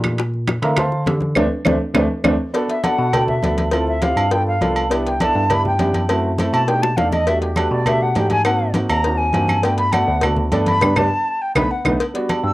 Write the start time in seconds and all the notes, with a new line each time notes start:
Already playing: A#2 D#3 G3 A3 D4
0.04 high bongo, high conga, high timbale, claves
0.18 high bongo, high conga, high timbale
0.34 high conga
0.47 high bongo, high conga, high timbale, claves
0.62 D3 E3 A3 C4 D4 A#4 E5 F5 A#5, high bongo, high conga, high timbale
0.76 C5 F5 A5 C6, high bongo, high conga, low conga, high timbale, claves
0.92 high bongo, high conga
1.06 D3, high bongo, low bongo, high conga, high timbale, low timbale
1.21 high bongo, high conga
1.35 D2 A3 C4 D4, low bongo, high conga, high timbale, claves
1.65 D2 A3 C4 D4, low bongo, high conga, high timbale, claves
1.94 D2 A3 C4 D4, low bongo, high conga, high timbale, claves
2.24 D2 A3 C4 D4, low bongo, high conga, high timbale, claves
2.54 B3 D4 F#4 A4, cowbell, high conga, low agogo
2.68 E5, cowbell, high conga
2.83 B3 D4 F#4 A4 F#5, cowbell, high conga, low agogo
2.98 B2, high conga
3.13 B3 D4 F#4 A4 G5, cowbell, high conga, low conga, low agogo
3.28 E5, high conga, low conga
3.42 D2 B3 D4 F#4 A4, cowbell, high conga, low agogo
3.58 cowbell, high conga, low agogo
3.71 C4 E4 F4 A4, cowbell, high conga, low agogo
3.87 E5, high conga
4.02 C4 E4 F4 G4 F5, cowbell, high conga, low agogo
4.16 G2, high conga, low agogo
4.31 B3 D4 F4 A4 G5, cowbell, high conga
4.47 F5, high conga
4.61 C2 B3 D4 F4 A4, cowbell, high conga, low agogo
4.76 low agogo
4.89 B3 D4 E4 G4, cowbell, high conga, low agogo
5.05 G5, cowbell, high conga
5.20 B3 D4 E4 A4 A5, cowbell, high conga, low agogo
5.35 G2, high conga
5.50 B3 D4 E4 G4 B5, cowbell, high conga, low conga, low agogo
5.65 G5, high conga, low conga
5.79 F#2 B3 D4 E4 G4, cowbell, high conga, low timbale, low agogo
5.94 cowbell, high conga, low agogo
6.09 A3 C4 E4 F#4, cowbell, low agogo
6.24 high conga
6.38 A3 C4 E4 A4, cowbell, high conga, low agogo
6.53 B2 A5, high conga, low agogo
6.67 A3 D4 D#4 G4 G5, cowbell, high conga
6.82 A5, high bongo, high conga
6.97 E2 A3 D4 D#4 A4 F5, cowbell, high bongo, high conga, low agogo
7.12 D#5, low bongo, high conga, low agogo
7.27 A3 D4 F#4 G4 E5, cowbell, high conga, low agogo
7.41 G4, cowbell, high conga
7.56 A3 D4 F#4 G4 B4, cowbell, high conga, low agogo, claves
7.71 B2 D5, high conga
7.86 A3 D4 F#4 G4 E5, cowbell, high conga, low conga, low agogo, claves
8.01 F#5, high conga
8.15 G#2 A3 D4 F#4 G4 G5, cowbell, high conga, low timbale, low agogo
8.30 G#5, cowbell, high conga, low agogo
8.45 A#3 C4 D#4 F#4 F#5, cowbell, high conga, low agogo, claves
8.60 high conga
8.74 A#3 C4 D#4 F#4, cowbell, high conga, low agogo
8.89 D#2 A#5, high conga, low agogo, claves
9.03 A#3 C4 D#4 F#4, cowbell, high conga
9.17 G#5, high conga
9.33 G2 A#3 C4 D#4 F#4, cowbell, high conga, low agogo
9.48 high conga, low agogo, claves
9.62 A3 B3 D4 F#4 G5, cowbell, high conga, low agogo
9.78 B5, cowbell, high conga
9.93 A3 B3 D4 F#4 F#5, cowbell, high conga, low agogo, claves
10.08 D2, high conga
10.21 A3 B3 D4 F#4, cowbell, high conga, low conga, low agogo, claves
10.37 high conga, low conga
10.52 G2 A3 B3 D4 A4, cowbell, high conga, low agogo
10.66 B5, cowbell, high conga, low agogo
10.81 G2 G3 B3 D4, cowbell, low conga, high timbale, claves
10.96 G2 G3 B3 D4 A5, cowbell, low conga, high timbale, claves
11.42 G5
11.55 B1 A3 B3 D#4 B5, cowbell, low conga, high timbale, claves
11.71 F#5
11.85 B1 A3 B3 D#4, cowbell, low conga, high timbale, claves
12.00 cowbell, high conga, low agogo
12.14 G3 B3 D4 F#4, cowbell, high conga
12.29 cowbell, high conga, low agogo, claves
12.44 G2 E6, high conga